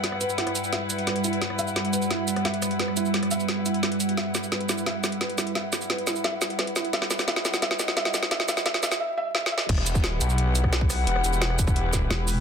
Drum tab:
CC |------------------------------------------------|------------------------------------------------|------------------------------------------------|------------------------------------------------|
HH |x-----x-----x--x--x-----x-----x--x--x--x--x--x--|x-----x-----x--x--x-----x-----x--x--x--x--x--x--|x-----x-----x--x--x-----x-----x--x--x--x--x--x--|x-----x-----x--x--x-----x-----x--x--x--x--x--x--|
SH |------x--x--------x--x--------x-----------x-----|------x--x--------x--x--------x-----------x-----|------x--x--------x--x--------x-----------x-----|------x--x--------x--x--------x-----------x-----|
SD |o--r--------o--r--------o-----------o-----------|o--r--------o-----------o--------r--o-----r-----|o--r--------o--r--------o-----------o-----------|o-----o-----o-----o-----o-----o-----o-----o-----|
BD |------------------------------------------------|------------------------------------------------|------------------------------------------------|------------------------------------------------|

CC |------------------------------------------------|------------------------------------------------|------------------------------------------------|x-----------------------------------------------|
HH |x-----x-----x--x--x-----x-----x--x--x--x--x--x--|x-----x-----x--x--x-----x-----x--x--x--x--x--x--|x-----x-----x--x--x-----------------------------|x-----x-----x-----x-----x-----x-----x-----o-----|
SH |------x--x--------x--x--------x-----------x-----|------x--x--------x--x--------x-----------x-----|------x--x--------x--x--------------------------|------x--x--------x--x--------x-----------x-----|
SD |o-----o-----o-----o-----o-----o-----o-----o-----|o--o--o--o--o--o--o--o--o--o--o--o--o--o--o--o--|o--o--o--o--o--o--o--o--------------o---o---o---|---r--------o--------------------r--o-----r-----|
BD |------------------------------------------------|------------------------------------------------|------------------------------------------------|o--------o-----------------------o-----o--------|

CC |------------------------------------------------|
HH |x-----x-----x-----x-----x-----x-----x-----o-----|
SH |------x--x--------x--x--------x-----------x-----|
SD |---r--------o--r--------------o-----o-----------|
BD |------------------o--o--------o-----------------|